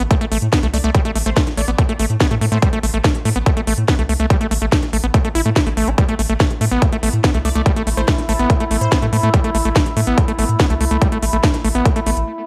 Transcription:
0.00 A1 B3, closed hi-hat
0.11 A3, kick, closed hi-hat
0.21 A3, closed hi-hat
0.32 A1 A3, open hi-hat
0.42 A2, closed hi-hat
0.53 B3, kick, snare, closed hi-hat
0.63 C2 A3, closed hi-hat
0.74 C2 A3 D5, open hi-hat
0.84 C2 A3 D5, closed hi-hat
0.95 G3, kick, closed hi-hat
1.05 A3, closed hi-hat
1.15 A1 A3, open hi-hat
1.26 A1 A3 C5, closed hi-hat
1.36 A3, kick, snare, closed hi-hat
1.47 snare, closed hi-hat
1.57 A1 A3 D5, open hi-hat
1.68 A1 B3, closed hi-hat
1.78 A3, kick, closed hi-hat
1.89 A3, closed hi-hat
1.99 A1 A3, open hi-hat
2.10 A2, closed hi-hat
2.20 B3, kick, snare, closed hi-hat
2.31 A2 A3, closed hi-hat
2.41 A2 A3, open hi-hat
2.52 A2 A3 C5, closed hi-hat
2.62 G3 C5, kick, closed hi-hat
2.73 A3, closed hi-hat
2.83 A1 A3, open hi-hat
2.94 A1 A3, closed hi-hat
3.04 A3, kick, snare, closed hi-hat
3.15 closed hi-hat
3.25 A2 A3, open hi-hat
3.36 A1 B3, closed hi-hat
3.46 A3, kick, closed hi-hat
3.57 A3, closed hi-hat
3.67 A1 A3, open hi-hat
3.78 A2, closed hi-hat
3.88 B3, kick, snare, closed hi-hat
3.99 C2 A3, closed hi-hat
4.09 C2 A3, open hi-hat
4.20 C2 A3, closed hi-hat
4.30 G3, kick, closed hi-hat
4.41 A3, closed hi-hat
4.51 A1 A3, open hi-hat
4.62 A1 A3, closed hi-hat
4.72 A3, kick, snare, closed hi-hat
4.83 snare, closed hi-hat
4.93 A1 A3, open hi-hat
5.04 A1 B3, closed hi-hat
5.14 A3, kick, closed hi-hat
5.25 A3, closed hi-hat
5.35 A1 E4, open hi-hat
5.46 A2 A3, closed hi-hat
5.56 E4, kick, snare, closed hi-hat
5.67 A1 A3, closed hi-hat
5.77 A1 A3, open hi-hat
5.88 A1 E4, closed hi-hat
5.98 G3 E4, kick, closed hi-hat
6.09 A3, closed hi-hat
6.19 A1 A3, open hi-hat
6.29 A1 A3
6.40 A3, kick, snare, closed hi-hat
6.51 closed hi-hat
6.61 A2 A3, open hi-hat
6.71 A1 B3, closed hi-hat
6.82 A3, kick, closed hi-hat
6.92 A3, closed hi-hat
7.03 A1 A3, open hi-hat
7.13 A2, closed hi-hat
7.24 B3, kick, snare, closed hi-hat
7.34 C2 A3, closed hi-hat
7.45 C2 A3 D5, open hi-hat
7.55 C2 A3 D5, closed hi-hat
7.66 G3, kick, closed hi-hat
7.76 A3, closed hi-hat
7.87 A1 A3, open hi-hat
7.97 A1 A3 C5, closed hi-hat
8.08 A3, kick, snare, closed hi-hat
8.18 snare, closed hi-hat
8.29 A1 A3 A4, open hi-hat
8.39 A1 B3, closed hi-hat
8.50 A3, kick, closed hi-hat
8.60 A3, closed hi-hat
8.71 A1 A3, open hi-hat
8.81 A2 C5, closed hi-hat
8.92 B3, kick, snare, closed hi-hat
9.02 A2 A3, closed hi-hat
9.13 A2 A3, open hi-hat
9.23 A2 A3, closed hi-hat
9.34 G3, kick, closed hi-hat
9.44 A3, closed hi-hat
9.55 A1 A3, open hi-hat
9.65 A1 A3, closed hi-hat
9.76 A3, kick, snare, closed hi-hat
9.86 closed hi-hat
9.97 A2 A3, open hi-hat
10.07 A1 B3, closed hi-hat
10.18 A3, kick, closed hi-hat
10.28 A3, closed hi-hat
10.39 A1 A3, open hi-hat
10.49 A2, closed hi-hat
10.60 B3, kick, snare, closed hi-hat
10.70 C2 A3, closed hi-hat
10.81 C2 A3, open hi-hat
10.91 C2 A3, closed hi-hat
11.02 G3, kick, closed hi-hat
11.12 A3, closed hi-hat
11.23 A1 A3, open hi-hat
11.33 A1 A3, closed hi-hat
11.43 A3, kick, snare, closed hi-hat
11.54 snare, closed hi-hat
11.64 A1 A3, open hi-hat
11.75 A1 B3, closed hi-hat
11.85 A3, kick, closed hi-hat
11.96 A3, closed hi-hat
12.06 A1 A3, open hi-hat
12.17 A1, closed hi-hat

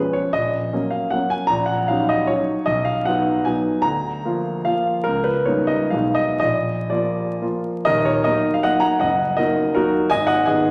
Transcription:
Already playing: F3 G#3 C#4 B4
0.13 C#5
0.33 A#1 D#5
0.73 F#3 A#3 C#4
0.91 F5
1.11 F#3 A#3 C#4 F#5
1.30 G#5
1.47 A#1 A#5
1.66 F#5
1.88 F#3 C#4 D#4 F5
2.09 D#5
2.27 F#3 C#4 D#4 C#5
2.66 B1 D#5
2.85 F5
3.05 F#3 B3 D#4 F#5
3.45 F#3 B3 D#4 G#5
3.82 D2 A#5
4.25 F3 A#3 F4
4.65 F3 A#3 F4 F5
5.04 C#2 A#4
5.24 B4
5.45 G3 A#3 D#4 C#5
5.67 D#5
5.90 B1 G#3 B3 D#4 F5
6.15 D#5
6.40 A#1 D#5
6.90 F3 A#3 F4 D5
7.42 F3 A#3 F4
7.85 D#1 D#2 A#4 D#5
8.05 A#4 C#5
8.24 F#3 A#3 D#4 A#4 D#5
8.54 F5
8.63 F#3 A#3 D#4 D#5 F#5
8.80 F#5 A#5
9.00 F#1 F#2 D#5 F#5
9.37 F#3 A#3 D#4 A#4 D#5
9.75 F#3 A#3 D#4 F#4 A#4
10.10 G#1 G#2 D#5 G#5
10.27 D#5 F#5
10.46 D#3 B3 G#4 D#5 G#5

